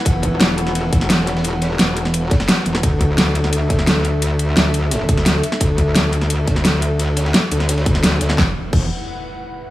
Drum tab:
CC |----------------|----------------|----------------|----------------|
RD |x-x-x-xxx-x-x-xx|xxx-xxx-x-xxxxx-|x-x-x-xxx-x-x-x-|xxx-x-x-x-xxx-x-|
HH |x-x-x-x-x-x-x-x-|x-x-x-x-x-x-x-x-|x-x-x-x-x-x-x-x-|x-x-x-x-x-x-x-x-|
SD |----oo-o--oooooo|--ooo--o--oooo-o|----oo-o--oooo--|----oo--oo-oo--o|
BD |o-o-------o-----|----------o-----|o-o-------o-----|----------o-----|

CC |----------------|----------------|----x-----------|
RD |x-x-x-xxx-x-x-x-|xxxxx-x-xxx-xxxx|----------------|
HH |x-x-x-x-x-x-x-x-|x-x-x-x-x-x-x-x-|----------------|
SD |----oo-o--oooo--|--oooo-ooo-ooooo|o---------------|
BD |o-o-------o-----|----------o-----|o---o-----------|